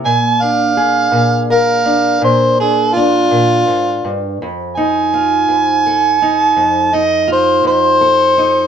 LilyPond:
<<
  \new Staff \with { instrumentName = "Harmonica" } { \time 12/8 \key bes \major \tempo 4. = 55 aes''8 f''4. f''4 c''8 aes'8 f'2 | r8 aes''2. ees''8 c''8 c''4. | }
  \new Staff \with { instrumentName = "Steel-string acoustic guitar" } { \time 12/8 \key bes \major << { bes8 d'8 aes'4 bes'8 d'4 d'8 d'2 | r8 ees'8 f'4 a'8 ees'4 ees'8 f'4 a'8 ees'8 | } \\ { bes,4. bes,4. bes,4. bes,8 aes,8 g,8 | f,4. f,4. f,4. f,4. | } >> }
>>